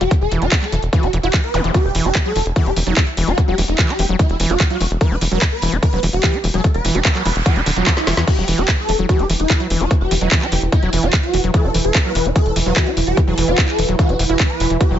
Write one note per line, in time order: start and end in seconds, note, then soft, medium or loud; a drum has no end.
0.01 0.07 E1 medium
0.01 0.04 G3 medium
0.01 0.12 G4 medium
0.01 closed hi-hat medium
0.11 0.14 E3 loud
0.11 kick loud
0.11 closed hi-hat medium
0.21 0.28 E1 medium
0.21 0.33 A4 medium
0.32 0.38 E1 medium
0.32 0.43 E3 medium
0.32 closed hi-hat medium
0.42 0.48 E1 medium
0.42 0.47 F#4 medium
0.42 0.53 F#4 medium
0.42 closed hi-hat soft
0.52 0.55 E3 loud
0.52 kick loud
0.52 clap loud
0.52 closed hi-hat medium
0.62 0.65 G3 medium
0.62 0.79 A4 medium
0.62 clap soft
0.72 0.79 E1 medium
0.72 0.75 E3 loud
0.72 closed hi-hat medium
0.83 0.89 E1 medium
0.83 closed hi-hat soft
0.93 1.05 E3 medium
0.93 1.10 F#4 medium
0.93 kick loud
0.93 closed hi-hat medium
1.03 1.09 E1 medium
1.03 1.08 F#4 medium
1.03 closed hi-hat soft
1.13 1.20 E1 loud
1.13 1.18 E3 medium
1.13 closed hi-hat medium
1.23 1.30 E1 medium
1.23 1.28 E4 medium
1.23 1.35 G4 medium
1.23 closed hi-hat soft
1.34 1.41 E3 medium
1.34 kick loud
1.34 clap loud
1.34 closed hi-hat medium
1.44 1.61 B4 loud
1.44 closed hi-hat soft
1.54 1.60 E1 medium
1.54 1.61 E3 medium
1.54 closed hi-hat medium
1.54 zap medium
1.64 1.71 E1 medium
1.64 1.71 E3 medium
1.64 closed hi-hat medium
1.74 1.77 E3 loud
1.74 1.91 G4 loud
1.74 kick loud
1.74 closed hi-hat medium
1.85 1.91 E1 medium
1.95 2.01 E1 medium
1.95 2.07 E3 medium
1.95 open hi-hat loud
2.05 2.11 E1 medium
2.05 2.10 F#4 medium
2.05 2.16 G4 medium
2.15 2.18 E3 loud
2.15 kick loud
2.15 clap loud
2.15 closed hi-hat medium
2.25 2.33 F#3 medium
2.25 2.42 A4 medium
2.36 2.42 E1 loud
2.36 2.39 E3 loud
2.36 open hi-hat medium
2.46 2.52 E1 medium
2.46 closed hi-hat soft
2.56 2.68 E3 medium
2.56 2.73 G4 medium
2.56 kick loud
2.56 closed hi-hat medium
2.66 2.73 E1 medium
2.66 2.71 F#4 medium
2.66 closed hi-hat soft
2.76 2.83 E1 loud
2.76 2.79 E3 loud
2.76 open hi-hat loud
2.87 2.93 E1 medium
2.87 2.94 F#3 medium
2.87 3.09 E4 loud
2.87 closed hi-hat soft
2.97 3.00 E3 loud
2.97 kick loud
2.97 clap loud
2.97 closed hi-hat medium
3.07 closed hi-hat soft
3.17 3.24 E1 medium
3.17 3.29 E3 medium
3.17 open hi-hat medium
3.27 3.34 E1 medium
3.27 3.39 F#4 medium
3.27 3.32 F#4 medium
3.27 closed hi-hat soft
3.38 3.41 E3 loud
3.38 kick loud
3.38 closed hi-hat medium
3.48 3.54 E1 medium
3.48 3.55 F#3 medium
3.48 3.59 G4 medium
3.58 3.64 E1 medium
3.58 3.61 E3 loud
3.58 open hi-hat loud
3.68 3.75 E1 medium
3.68 3.79 E4 medium
3.68 closed hi-hat medium
3.79 3.90 E3 medium
3.79 kick loud
3.79 clap loud
3.79 closed hi-hat medium
3.89 3.94 F#4 medium
3.89 4.05 G4 medium
3.89 clap soft
3.99 4.05 E1 medium
3.99 4.02 E3 loud
3.99 open hi-hat medium
4.09 4.15 E1 medium
4.09 4.16 F#3 medium
4.19 4.22 E3 loud
4.19 4.36 E4 medium
4.19 kick loud
4.19 closed hi-hat medium
4.30 4.36 E1 medium
4.30 closed hi-hat soft
4.40 4.46 E1 loud
4.40 4.51 E3 medium
4.40 open hi-hat loud
4.50 4.56 E1 medium
4.50 4.55 F#4 medium
4.50 4.61 F#4 medium
4.50 closed hi-hat medium
4.60 4.63 E3 loud
4.60 kick loud
4.60 clap loud
4.60 closed hi-hat medium
4.70 4.78 F#3 medium
4.70 4.87 F#4 medium
4.70 closed hi-hat soft
4.81 4.87 E1 medium
4.81 4.83 E3 loud
4.81 open hi-hat medium
4.91 4.97 E1 medium
4.91 closed hi-hat medium
5.01 5.13 E3 medium
5.01 5.18 B4 loud
5.01 kick loud
5.01 closed hi-hat medium
5.11 5.17 E1 medium
5.11 5.16 F#4 medium
5.21 5.28 E1 medium
5.21 5.24 E3 loud
5.21 open hi-hat loud
5.32 5.38 E1 medium
5.32 5.39 F#3 medium
5.32 5.43 B4 medium
5.32 closed hi-hat medium
5.42 5.45 E3 loud
5.42 kick loud
5.42 clap loud
5.42 closed hi-hat medium
5.52 5.69 B4 loud
5.62 5.69 E1 loud
5.62 5.74 E3 medium
5.62 open hi-hat medium
5.72 5.79 E1 medium
5.72 5.77 F#4 medium
5.72 closed hi-hat medium
5.83 5.86 E3 loud
5.83 5.99 B4 medium
5.83 kick loud
5.83 closed hi-hat medium
5.93 5.99 E1 medium
5.93 6.00 F#3 medium
5.93 closed hi-hat soft
6.03 6.09 E1 loud
6.03 6.06 E3 loud
6.03 open hi-hat loud
6.13 6.20 E1 medium
6.13 6.36 G4 loud
6.13 closed hi-hat medium
6.23 6.35 E3 medium
6.23 kick loud
6.23 clap loud
6.23 closed hi-hat medium
6.34 6.38 F#4 medium
6.34 closed hi-hat soft
6.44 6.50 E1 medium
6.44 6.47 E3 loud
6.44 open hi-hat medium
6.54 6.60 E1 medium
6.54 6.61 F#3 medium
6.54 6.65 A4 medium
6.54 closed hi-hat medium
6.64 6.67 E3 loud
6.64 kick loud
6.64 closed hi-hat medium
6.64 noise sweep medium
6.74 6.81 E1 medium
6.74 6.86 B4 medium
6.74 closed hi-hat soft
6.85 6.91 E1 medium
6.85 6.96 E3 medium
6.85 open hi-hat loud
6.95 7.01 E1 medium
6.95 7.00 F#4 medium
6.95 7.06 G4 medium
6.95 closed hi-hat medium
7.05 7.08 E3 loud
7.05 kick loud
7.05 clap loud
7.05 closed hi-hat medium
7.15 7.22 F#3 medium
7.15 7.32 B4 loud
7.15 clap soft
7.15 closed hi-hat soft
7.25 7.32 E1 loud
7.25 7.28 E3 loud
7.25 open hi-hat medium
7.36 7.42 E1 medium
7.36 closed hi-hat medium
7.46 7.58 E3 medium
7.46 7.63 G4 medium
7.46 kick loud
7.46 closed hi-hat medium
7.56 7.62 E1 medium
7.56 7.61 F#4 medium
7.56 closed hi-hat soft
7.66 7.73 D1 loud
7.66 7.71 D3 medium
7.66 open hi-hat loud
7.76 7.83 E1 medium
7.76 7.88 F#3 medium
7.76 7.88 F#4 medium
7.76 closed hi-hat medium
7.87 7.94 E3 medium
7.87 kick loud
7.87 snare medium
7.87 clap loud
7.87 closed hi-hat medium
7.97 8.14 E4 loud
7.97 snare medium
7.97 closed hi-hat soft
8.07 8.13 E1 loud
8.07 8.14 E3 medium
8.07 snare medium
8.07 open hi-hat medium
8.17 8.24 E2 medium
8.17 8.25 E3 loud
8.17 snare medium
8.17 closed hi-hat medium
8.27 8.30 E3 loud
8.27 14.99 E3 medium
8.27 8.44 G4 loud
8.27 kick loud
8.27 closed hi-hat medium
8.27 crash medium
8.38 8.44 E1 medium
8.38 8.45 F#3 medium
8.48 8.54 E1 medium
8.48 8.60 E3 medium
8.48 open hi-hat loud
8.58 8.64 E1 medium
8.58 8.63 F#4 medium
8.58 8.69 G4 medium
8.58 closed hi-hat medium
8.68 8.71 E3 loud
8.68 kick loud
8.68 clap loud
8.68 closed hi-hat medium
8.79 8.95 A4 loud
8.89 8.95 E1 loud
8.89 8.92 E3 loud
8.89 open hi-hat medium
8.99 9.05 E1 medium
8.99 9.06 F#3 medium
8.99 closed hi-hat medium
9.09 9.21 E3 medium
9.09 9.26 G4 medium
9.09 kick loud
9.09 closed hi-hat medium
9.19 9.26 E1 medium
9.19 9.24 F#4 medium
9.19 closed hi-hat soft
9.30 9.36 E1 loud
9.30 9.32 E3 loud
9.30 open hi-hat loud
9.40 9.46 E1 medium
9.40 9.62 E4 medium
9.40 closed hi-hat medium
9.50 9.53 E3 loud
9.50 kick loud
9.50 clap loud
9.50 closed hi-hat medium
9.60 9.67 F#3 medium
9.60 closed hi-hat soft
9.70 9.77 E1 loud
9.70 9.82 E3 medium
9.70 open hi-hat medium
9.81 9.87 E1 medium
9.81 9.92 F#4 medium
9.81 9.85 F#4 medium
9.81 closed hi-hat medium
9.91 9.94 E3 loud
9.91 kick loud
9.91 closed hi-hat medium
10.01 10.07 E1 medium
10.01 10.12 G4 medium
10.11 10.18 E1 loud
10.11 10.14 E3 loud
10.11 open hi-hat loud
10.21 10.28 E1 medium
10.21 10.29 F#3 medium
10.21 10.33 E4 medium
10.21 closed hi-hat medium
10.32 10.43 E3 medium
10.32 kick loud
10.32 clap loud
10.32 closed hi-hat medium
10.42 10.47 F#4 medium
10.42 10.59 G4 medium
10.42 clap soft
10.52 10.58 E1 loud
10.52 10.55 E3 loud
10.52 open hi-hat medium
10.62 10.69 E1 medium
10.62 closed hi-hat soft
10.72 10.75 E3 loud
10.72 10.89 E4 medium
10.72 kick loud
10.72 closed hi-hat medium
10.83 10.89 E1 medium
10.83 10.90 F#3 medium
10.83 closed hi-hat soft
10.93 10.99 E1 loud
10.93 11.05 E3 medium
10.93 open hi-hat loud
11.03 11.09 E1 medium
11.03 11.14 F#4 medium
11.03 11.08 F#4 medium
11.03 closed hi-hat medium
11.13 11.16 E3 loud
11.13 kick loud
11.13 clap loud
11.13 closed hi-hat medium
11.23 11.40 F#4 loud
11.23 closed hi-hat soft
11.34 11.40 E1 medium
11.34 11.37 E3 loud
11.34 open hi-hat medium
11.44 11.50 E1 medium
11.44 11.51 F#3 medium
11.44 closed hi-hat medium
11.54 11.66 E3 medium
11.54 11.71 A4 loud
11.54 kick loud
11.54 closed hi-hat medium
11.64 11.71 E1 medium
11.64 11.69 F#4 medium
11.74 11.81 E1 medium
11.74 11.77 E3 loud
11.74 open hi-hat loud
11.85 11.91 E1 medium
11.85 11.96 A4 medium
11.85 closed hi-hat medium
11.95 11.98 E3 loud
11.95 kick loud
11.95 clap loud
11.95 closed hi-hat medium
12.05 12.12 F#3 medium
12.05 12.22 B4 medium
12.15 12.22 E1 loud
12.15 12.27 E3 medium
12.15 open hi-hat loud
12.25 12.32 E1 medium
12.25 12.30 F#4 medium
12.25 closed hi-hat soft
12.36 12.39 E3 loud
12.36 12.52 A4 medium
12.36 kick loud
12.36 closed hi-hat medium
12.46 12.52 E1 medium
12.46 closed hi-hat soft
12.56 12.62 E1 loud
12.56 12.59 E3 loud
12.56 open hi-hat loud
12.66 12.73 E1 medium
12.66 12.74 F#3 medium
12.66 12.89 F#4 loud
12.66 closed hi-hat soft
12.76 12.88 E3 medium
12.76 kick loud
12.76 clap loud
12.76 closed hi-hat medium
12.87 12.91 F#4 medium
12.87 closed hi-hat soft
12.97 13.03 E1 medium
12.97 13.00 E3 loud
12.97 open hi-hat medium
13.07 13.13 E1 medium
13.07 13.18 G4 medium
13.07 closed hi-hat medium
13.17 13.20 E3 loud
13.17 kick loud
13.17 closed hi-hat medium
13.27 13.34 E1 medium
13.27 13.35 F#3 medium
13.27 13.39 A4 medium
13.38 13.44 E1 medium
13.38 13.49 E3 medium
13.38 open hi-hat loud
13.48 13.54 E1 medium
13.48 13.59 F#4 medium
13.48 13.53 F#4 medium
13.48 closed hi-hat medium
13.58 13.61 E3 loud
13.58 kick loud
13.58 clap loud
13.58 closed hi-hat medium
13.68 13.85 A4 loud
13.68 clap soft
13.79 13.85 E1 loud
13.79 13.81 E3 loud
13.79 open hi-hat loud
13.89 13.95 E1 medium
13.89 13.96 F#3 medium
13.89 closed hi-hat soft
13.99 14.11 E3 medium
13.99 14.16 F#4 loud
13.99 kick loud
13.99 closed hi-hat medium
14.09 14.15 E1 medium
14.09 14.14 F#4 medium
14.09 closed hi-hat soft
14.19 14.26 E1 loud
14.19 14.24 E3 medium
14.19 open hi-hat loud
14.30 14.36 E1 medium
14.30 14.34 E4 medium
14.30 14.41 G4 medium
14.30 closed hi-hat medium
14.40 14.47 E3 medium
14.40 kick loud
14.40 clap loud
14.40 closed hi-hat medium
14.50 14.67 B4 medium
14.50 closed hi-hat soft
14.60 14.66 E1 loud
14.60 14.67 E3 medium
14.60 open hi-hat medium
14.70 14.77 E1 medium
14.70 14.78 E3 medium
14.70 closed hi-hat medium
14.81 14.83 E3 loud
14.81 14.97 G4 loud
14.81 kick loud
14.81 closed hi-hat medium
14.91 14.97 E1 medium
14.91 14.98 F#3 medium